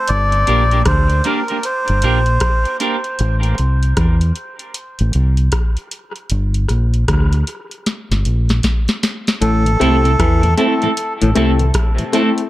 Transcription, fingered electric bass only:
0.10 G1
0.49 A#1
0.87 D2
1.89 G1
2.04 A#1
3.20 A1
3.59 C2
3.97 E2
5.00 A1
5.15 C2
6.31 G1
6.70 A#1
7.09 D2
8.11 G1
8.26 A#1
9.42 A1
9.81 C2
10.20 E2
11.23 A1
11.37 C2

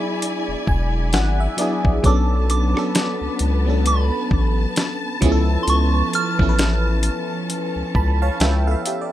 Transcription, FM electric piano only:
Already playing: F#3 B3 D4 E4 G#4
0.68 G#5
1.14 F#5
1.40 E5
1.57 F#3 B3 D4 E4 D5
1.61 G#4
2.03 F#3 B3 C#4 D4
2.07 A4
2.74 F#3 B3 C#4 D4
2.79 A4
3.65 F#3 B3 C#4 D4
3.70 A4
5.21 F3 B3 C#4 E4
5.25 G#4
5.32 A4
6.38 F3 B3 C#4 E4
6.43 A4
6.49 B4
7.96 A5 B5
8.22 C#5 F5 A5
8.41 B4 E5 G5
8.67 A4 E5 F5
8.87 G4 E5
9.01 D5

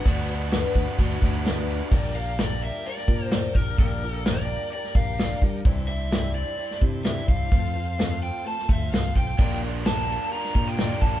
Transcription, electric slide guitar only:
2.15 F5
2.39 D5
2.62 E5
2.86 D5
3.32 C5
3.57 A#4
3.80 A#4
4.26 D5
4.73 D5
4.95 F5
5.88 E5
6.35 D5
7.05 E5
7.29 F5
8.23 G5
8.47 A5
8.69 E5
8.92 F5
9.16 G5
9.86 A5
10.33 A#5
10.68 G5
11.01 A5

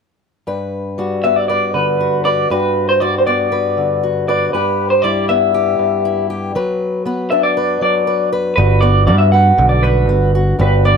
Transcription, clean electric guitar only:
1.24 E5
1.36 D5
1.48 D5
1.74 B4
2.25 D5
2.51 B4
2.89 C5
3.00 D5
3.18 C5
3.27 D5
4.28 D5
4.53 B4
4.90 C5
5.02 D5
5.29 E5
7.30 E5
7.43 D5
7.82 D5
8.56 B4
8.81 D5
9.07 D5
9.18 E5
9.32 F#5
9.69 D5
9.83 B4
10.61 B4
10.85 D5

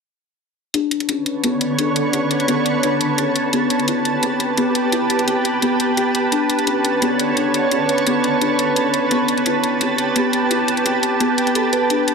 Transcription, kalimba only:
0.74 D4
1.09 C#4
1.44 B3
1.78 D4
2.13 C#4
2.48 B3
2.83 D4
3.18 C#4
3.53 B3
3.88 E4
4.23 C4
4.58 B3
4.93 E4
5.28 C4
5.62 B3
5.97 G4
6.32 D4
6.67 C#4
7.02 B3
7.37 D4
7.72 C#4
8.07 B3
8.42 D4
8.76 C#4
9.11 B3
9.46 E4
9.81 C4
10.16 B3
10.51 E4
10.86 C4
11.20 B3
11.55 A4
11.73 B4
11.90 D4

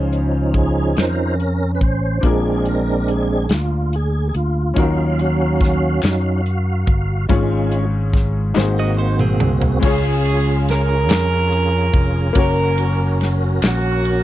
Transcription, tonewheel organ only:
Already playing: F3 C#4 D#4
0.54 G#4
0.98 F3 D#4 A#4 C5
1.75 B4
1.83 C5
2.24 G#3 C4 D4 G#4
2.69 A#4
3.11 G#4
3.54 F4
3.95 G#4
4.29 G#4
4.36 F4
4.74 F#3 C#4 F5
5.21 F#4
6.02 F#3 C#4 D#4
7.28 G#3 C#4 F4
8.55 A#3 C4 F#4
9.82 C#4 F4 G#4
12.35 C#4 F#4 A4
12.43 A#4

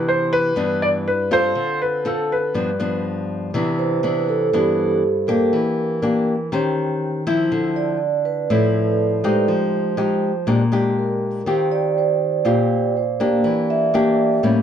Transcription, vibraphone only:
3.79 C5
4.29 A4
4.55 G4
5.27 A#4
7.76 D5
8.25 B4
8.51 A4
9.25 C5
10.99 A#4
11.49 C5
11.72 D5
11.98 C5
12.97 C5
13.46 D5
13.70 E5
13.95 D5

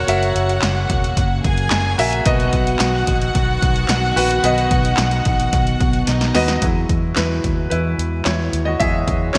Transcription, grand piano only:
Already playing: F#4 A#4 C#5
0.07 F#4 A#4 E5
1.98 F#4 A#4 E5
2.25 B2 F#4 B4 D#5
4.16 F#4 B4 F#5
4.43 B2 F#4 B4 D#5
6.34 F#4 B4 D#5
6.62 F#3 G#3 E4
7.16 E4 B4
7.70 E4 B4
8.25 E4 C#5
8.65 F#4 D#5
8.80 F#3 G#3 E4 G#4 E5
9.33 C#5

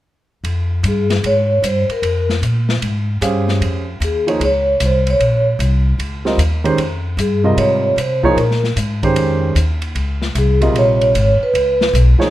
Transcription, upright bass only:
0.44 F2
0.83 G2
1.23 G#2
1.62 G2
1.89 muted upright bass stroke
2.02 F2
2.42 A#2
2.82 G#2
3.21 G2
3.61 F2
4.00 D#2
4.40 C#2
4.80 C2
5.19 A#1
5.59 C2
5.99 C#2
6.38 D#2
6.77 F2
7.17 G2
7.57 G#2
7.96 C3
8.36 A#2
8.76 G#2
9.16 F2
9.55 D#2
9.95 C#2
10.35 C2
10.75 A#1
11.14 G#1
11.40 muted upright bass stroke
11.54 C#2
11.93 B1

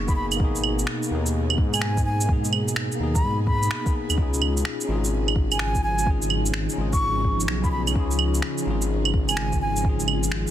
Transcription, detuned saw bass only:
Already playing: F#1
0.40 G#1
1.11 D#2
1.58 G#2
3.00 D#2
3.23 G#2
4.09 D#2
4.18 C#2
4.88 G#1
5.36 G#1
6.77 G#1
7.01 G#1
7.48 B1
7.95 C#2
8.66 G#1
9.14 G#1

